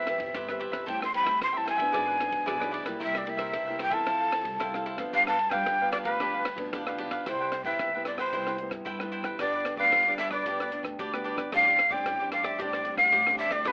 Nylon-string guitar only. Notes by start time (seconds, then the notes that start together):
Already playing: E3
0.08 C4 G4 B4
0.36 E3
0.50 C4 G4 B4
0.88 A2 G3 C4 E4
1.14 G3 C4 E4
1.43 E3
1.56 G3 C4 E4
1.81 E3 B3 D4
1.95 G#2
2.20 E3 B3 D4
2.48 G#2
2.62 E3 B3 D4
2.86 G3 A#3 E4
3.02 C3
3.27 G3 A#3 E4
3.54 G2
3.69 G3 A#3 E4
3.93 C4 E4 A4
4.08 F3
4.34 C4 E4 A4
4.61 C3
4.74 C4 E4 A4
4.98 F3 B3 D4
5.14 G2
5.52 F3 B3 D4
5.67 D3
5.81 F3 B3 D4
6.21 G2 F3 B3 D4
6.58 F3 B3 D4
6.74 D3
6.88 F3 B3 D4
7.27 C3 G3 E4
7.66 G3 B3 E4
7.80 G2
7.95 G3 B3 E4
8.34 C3 G3 B3 E4
8.61 G3 B3 E4
8.88 G2
9.02 G3 B3 E4
9.41 G2 G3 B3 D4
9.79 G3 B3 D4
9.94 D3
10.07 G3 B3 D4
10.47 G2 G3 B3 D4
10.73 G3 B3 D4
11.01 D3
11.14 G3 B3 D4
11.54 A2 G3 C4 D4
11.93 G3 C4 D4
12.08 A2
12.22 G3 C4 D4
12.61 A2 G3 C4 D4
12.86 G3 C4 D4
13.13 A2
13.28 G3 C4 D4
13.67 G2 F3 B3 D4